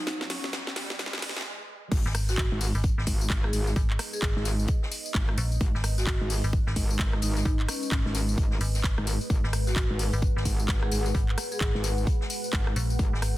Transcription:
Already playing: ambient pad G#3 G#4 B4 D#5, riser
0.07 snare, closed hi-hat
0.21 snare
0.30 vibraphone C#4, snare, closed hi-hat, open hi-hat
0.44 snare
0.53 snare, closed hi-hat
0.67 snare
0.76 snare, closed hi-hat, open hi-hat
0.90 snare
0.99 snare, closed hi-hat
1.06 snare
1.13 snare
1.18 snare
1.22 snare, closed hi-hat, open hi-hat
1.29 snare
1.36 snare
1.41 snare
1.92 wobble bass G#1, ambient pad G#3 G#4 B4 D#5, kick, closed hi-hat, crash, tambourine
2.06 fm bass G#1, snare
2.15 cross-stick, closed hi-hat, open hi-hat, tambourine
2.29 vibraphone F#4, snare, tambourine
2.38 fm bass G#1, vibraphone F#4, kick, snare, clap, closed hi-hat, tambourine
2.52 wobble bass G#1
2.60 open hi-hat, tambourine
2.75 fm bass G#1, tambourine
2.83 kick, closed hi-hat, tambourine
2.98 fm bass G#1, snare
3.06 wobble bass G#1, kick, closed hi-hat, open hi-hat, tambourine
3.21 tambourine
3.29 kick, snare, clap, closed hi-hat
3.44 vibraphone G#4, cross-stick
3.53 wobble bass G#1, vibraphone G#4, closed hi-hat, open hi-hat, tambourine
3.67 snare, tambourine
3.76 fm bass G#1, kick, closed hi-hat, tambourine
3.90 clap
3.99 cross-stick, closed hi-hat, open hi-hat, tambourine
4.13 vibraphone G#4, tambourine
4.22 fm bass G#1, vibraphone G#4, kick, snare, clap, closed hi-hat, tambourine
4.36 wobble bass G#1, snare
4.45 snare, closed hi-hat, open hi-hat, tambourine
4.60 tambourine
4.68 kick, closed hi-hat, tambourine
4.83 snare
4.91 open hi-hat, tambourine
5.06 tambourine
5.14 wobble bass G#1, kick, snare, clap, closed hi-hat
5.29 cross-stick
5.37 fm bass A#1, closed hi-hat, open hi-hat, tambourine
5.52 tambourine
5.60 wobble bass G#1, kick, closed hi-hat, tambourine
5.75 fm bass G#1, snare
5.83 cross-stick, closed hi-hat, open hi-hat, tambourine
5.98 vibraphone F#4, snare, tambourine
6.06 fm bass G#1, vibraphone F#4, kick, snare, clap, closed hi-hat, tambourine
6.21 wobble bass G#1
6.29 open hi-hat, tambourine
6.44 fm bass G#1, tambourine
6.53 kick, closed hi-hat, tambourine
6.67 fm bass G#1, snare
6.76 wobble bass G#1, kick, closed hi-hat, open hi-hat, tambourine
6.90 tambourine
6.99 kick, snare, clap, closed hi-hat
7.13 cross-stick
7.22 wobble bass G#1, vibraphone D#4, closed hi-hat, open hi-hat, tambourine
7.36 vibraphone D#4, snare, tambourine
7.45 fm bass G#1, kick, closed hi-hat
7.60 clap
7.68 vibraphone C#4, cross-stick, closed hi-hat, open hi-hat, tambourine
7.83 tambourine
7.92 fm bass G#1, kick, snare, clap, closed hi-hat, tambourine
8.06 wobble bass G#1, snare
8.15 snare, closed hi-hat, open hi-hat, tambourine
8.29 tambourine
8.38 wobble bass G#1, kick, closed hi-hat, tambourine
8.51 snare
8.61 fm bass G#1, closed hi-hat, open hi-hat, tambourine
8.74 snare, tambourine
8.83 kick, snare, clap, closed hi-hat
8.98 wobble bass G#1, cross-stick
9.07 closed hi-hat, open hi-hat, tambourine
9.21 tambourine
9.30 wobble bass G#1, ambient pad F#5, kick, closed hi-hat, tambourine
9.44 fm bass G#1, snare
9.53 cross-stick, closed hi-hat, open hi-hat, tambourine
9.67 vibraphone F#4, snare, tambourine
9.76 fm bass G#1, vibraphone F#4, kick, snare, clap, closed hi-hat
9.90 wobble bass G#1
9.99 open hi-hat, tambourine
10.13 fm bass G#1, tambourine
10.22 kick, closed hi-hat, tambourine
10.36 fm bass G#1, snare
10.45 wobble bass G#1, kick, closed hi-hat, open hi-hat, tambourine
10.60 tambourine
10.68 kick, snare, clap, closed hi-hat, tambourine
10.83 vibraphone G#4, cross-stick
10.91 wobble bass G#1, vibraphone G#4, closed hi-hat, open hi-hat, tambourine
11.06 snare, tambourine
11.15 fm bass G#1, kick, closed hi-hat, tambourine
11.29 clap
11.37 cross-stick, closed hi-hat, open hi-hat, tambourine
11.52 vibraphone G#4, tambourine
11.61 fm bass G#1, vibraphone G#4, kick, snare, clap, closed hi-hat, tambourine
11.75 wobble bass G#1, snare
11.83 snare, closed hi-hat, open hi-hat, tambourine
11.98 tambourine
12.07 kick, closed hi-hat, tambourine
12.21 snare
12.30 open hi-hat, tambourine
12.44 tambourine
12.53 wobble bass G#1, kick, snare, clap, closed hi-hat, tambourine
12.67 cross-stick
12.76 fm bass A#1, closed hi-hat, open hi-hat, tambourine
12.90 tambourine
12.99 wobble bass G#1, kick, closed hi-hat, tambourine
13.13 fm bass G#1, snare
13.22 cross-stick, closed hi-hat, open hi-hat, tambourine

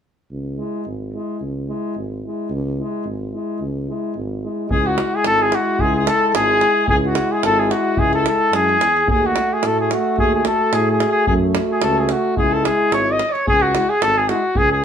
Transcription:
0.31 tuba C#2
0.58 trombone G#3, euphonium E4
0.86 tuba G#1
1.14 trombone G#3, euphonium E4
1.41 tuba C#2
1.68 trombone G#3, euphonium E4
1.96 tuba G#1
2.24 trombone G#3, euphonium E4
2.50 tuba C#2
2.78 trombone G#3, euphonium E4
3.05 tuba G#1
3.33 trombone G#3, euphonium E4
3.60 tuba C#2
3.88 trombone G#3, euphonium E4
4.15 tuba G#1
4.43 trombone G#3, euphonium E4
4.70 tuba C#2, trombone G#3, euphonium E4, cornet G#4, alto saxophone G#4, davul low
4.86 alto saxophone F#4, cornet F#4
4.98 davul high
5.15 alto saxophone G#4, cornet G#4
5.24 tuba G#1, cornet A4, alto saxophone A4, davul high
5.42 cornet G#4, alto saxophone G#4
5.52 cornet F#4, alto saxophone F#4, davul high
5.79 tuba C#2, cornet G#4, davul low
5.84 alto saxophone G#4
5.96 cornet G#4, alto saxophone G#4
6.07 cornet A4, alto saxophone A4, davul high
6.28 cornet A4, alto saxophone A4
6.34 tuba G#1, cornet G#4, alto saxophone G#4, davul high
6.61 davul high
6.88 tuba C#2, trombone G#3, euphonium E4, cornet G#4, alto saxophone G#4, davul low
7.06 alto saxophone F#4, cornet F#4
7.15 davul high
7.32 cornet G#4, alto saxophone G#4
7.43 tuba G#1, cornet A4, alto saxophone A4, davul high
7.59 cornet G#4, alto saxophone G#4
7.71 cornet F#4, alto saxophone F#4, davul high
7.97 tuba C#2, cornet G#4, alto saxophone G#4, davul low
8.13 cornet A4, davul high
8.17 alto saxophone A4
8.26 cornet A4, alto saxophone A4, davul high
8.52 tuba F#2, cornet G#4, davul high
8.57 alto saxophone G#4
8.69 davul high
8.80 tuba E2, davul high
8.97 davul high
9.06 tuba D#2, trombone A3, euphonium F#4, cornet G#4, davul low
9.12 alto saxophone G#4
9.26 alto saxophone F#4, cornet F#4
9.36 davul high
9.54 cornet G#4, alto saxophone G#4
9.62 tuba A2, davul high
9.67 cornet A4, alto saxophone A4
9.80 cornet G#4, alto saxophone G#4
9.91 cornet F#4, alto saxophone F#4, davul high
10.18 tuba D#2, cornet G#4, alto saxophone G#4, davul low
10.35 cornet G#4, alto saxophone G#4
10.45 alto saxophone A4, cornet A4, davul high
10.73 tuba A2, cornet G#4, alto saxophone G#4, davul high
10.92 alto saxophone G#4, cornet G#4
11.00 davul high
11.09 alto saxophone G#4, cornet G#4
11.27 tuba F#2, trombone A3, euphonium F#4, alto saxophone G#4, cornet G#4, davul low
11.55 davul high
11.70 alto saxophone G#4, cornet G#4
11.81 tuba C#2, alto saxophone A4, cornet A4, davul high
11.97 alto saxophone G#4, cornet G#4
12.09 alto saxophone F#4, cornet F#4, davul high
12.36 tuba C#2, trombone G#3, euphonium E4, alto saxophone G#4, cornet G#4, davul low
12.52 alto saxophone A4, cornet A4
12.65 alto saxophone G#4, cornet G#4, davul high
12.91 tuba G#1, alto saxophone C#5, cornet C#5, davul high
13.12 cornet D#5, alto saxophone D#5
13.19 davul high
13.30 alto saxophone C#5, cornet C#5
13.35 davul high
13.47 tuba C#2, alto saxophone G#4, cornet G#4, davul low
13.62 cornet F#4, alto saxophone F#4
13.75 trombone G#3, euphonium E4, davul high
13.89 alto saxophone G#4, cornet G#4
14.01 tuba G#1, alto saxophone A4, cornet A4, davul high
14.18 cornet G#4, alto saxophone G#4
14.29 trombone G#3, euphonium E4, cornet F#4, alto saxophone F#4, davul high
14.55 tuba C#2, alto saxophone G#4, cornet G#4, davul low
14.72 cornet G#4, alto saxophone G#4

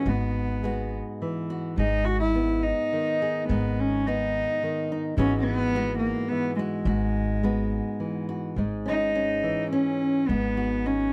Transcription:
Already playing: nylon-string guitar G#3 B3, cello C#4
0.06 upright bass G#1, nylon-string guitar G#2 F#4, cello B3
0.63 nylon-string guitar G#3 B3 F#4
1.22 nylon-string guitar E3
1.50 nylon-string guitar F#4
1.78 upright bass G#1, nylon-string guitar G#2 G#4, cello D#4
2.04 cello F#4
2.20 cello E4
2.35 nylon-string guitar B3
2.62 cello D#4
2.93 nylon-string guitar D#3
3.22 nylon-string guitar G#4
3.49 upright bass G#1, nylon-string guitar G#2 D#4, cello B3
3.80 cello C#4
4.07 nylon-string guitar B3 D#4, cello D#4
4.63 nylon-string guitar D#3
4.92 nylon-string guitar D#4
5.17 upright bass G#1, nylon-string guitar G#2 E3 G#3 B3 F#4, cello C#4
5.38 cello C#4
5.44 cello B3
5.75 nylon-string guitar G#3 B3 F#4
5.99 cello A#3
6.28 nylon-string guitar E3, cello B3
6.56 cello G#3, nylon-string guitar F#4
6.85 upright bass G#1, nylon-string guitar G#2 F#4
7.43 nylon-string guitar G#3 B3 F#4
8.00 nylon-string guitar E3
8.29 nylon-string guitar F#4
8.56 upright bass G#1, nylon-string guitar G#2 G#3
8.86 nylon-string guitar C#4, cello D#4
9.15 nylon-string guitar C#4
9.43 nylon-string guitar E3
9.71 cello C#4, nylon-string guitar C#4
10.27 upright bass G#1, nylon-string guitar G#2 B3, cello B3
10.57 nylon-string guitar F#4
10.86 cello C#4, nylon-string guitar D#4

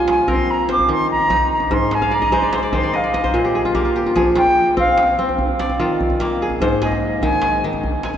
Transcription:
Already playing: kora F3 G3 A#3 F4
0.08 flute G#5, djembe slap
0.28 kora C4 A#4, flute C6, djembe bass
0.38 djembe tone
0.48 flute A#5, djembe slap
0.69 kora C5, flute D6, djembe slap
0.79 djembe tone, djembe bass
0.89 kora D#3, flute C6
1.10 flute A#5, djembe slap
1.20 djembe tone
1.30 kora D#4, djembe slap, djembe bass
1.53 flute A#5
1.60 djembe tone
1.71 kora G#2, flute C6, djembe bass
1.91 flute G#5, djembe slap
2.02 kora F5, djembe tone
2.11 kora D5, flute A#5
2.22 kora D#5, djembe bass
2.32 kora G#3 C5
2.42 kora D5, djembe tone
2.53 kora C5, djembe slap
2.63 kora D5
2.72 kora D#3 C5, flute C6, djembe bass
2.83 kora D5, djembe tone
2.93 kora D#5, flute F5
3.04 kora D5
3.14 kora D#5, djembe slap
3.24 kora C5, djembe slap, djembe tone, djembe bass
3.34 kora A#2 D#5
3.45 kora G4
3.55 kora G#4
3.65 kora F4, djembe tone
3.75 kora A#3 G4, djembe slap, djembe bass
3.85 kora F4, djembe slap
3.96 kora G4
4.06 kora F4, djembe tone
4.15 kora F3 G#4, djembe bass
4.36 kora F4, flute G5, djembe slap
4.46 djembe tone
4.77 kora C4, flute F5, djembe bass
4.88 djembe tone
4.97 djembe slap
5.19 kora C4
5.29 djembe tone
5.39 djembe bass
5.60 kora D5, djembe slap
5.70 djembe tone
5.79 kora D#3 F4
6.00 djembe slap, djembe bass
6.10 djembe tone
6.20 kora A#3, djembe slap
6.30 djembe slap
6.42 kora G#4
6.50 djembe tone
6.60 kora G#2 C5, djembe bass
6.82 kora G#4, flute D#5, djembe slap
6.92 djembe tone
7.22 kora D#3, flute G#5, djembe bass
7.33 djembe tone
7.42 djembe slap
7.64 kora D#3
7.73 djembe tone
7.84 djembe bass
8.03 kora G#5, djembe slap
8.14 djembe tone

